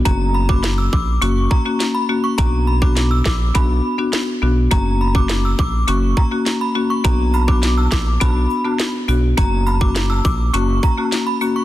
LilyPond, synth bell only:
\new Staff \with { instrumentName = "Synth bell" } { \time 4/4 \key b \minor \tempo 4 = 103 ais''16 r16 b''16 d'''16 r16 e'''16 d'''16 r16 cis'''16 r16 ais''16 r8 b''16 r16 cis'''16 | ais''16 r16 b''16 d'''16 r16 e'''16 d'''16 r16 b''8. r4 r16 | ais''16 r16 b''16 d'''16 r16 e'''16 d'''16 r16 cis'''16 r16 ais''16 r8 b''16 r16 cis'''16 | ais''16 r16 b''16 d'''16 r16 e'''16 d'''16 r16 b''8. r4 r16 |
ais''16 r16 b''16 d'''16 r16 e'''16 d'''16 r16 cis'''16 r16 ais''16 r8 b''16 r16 cis'''16 | }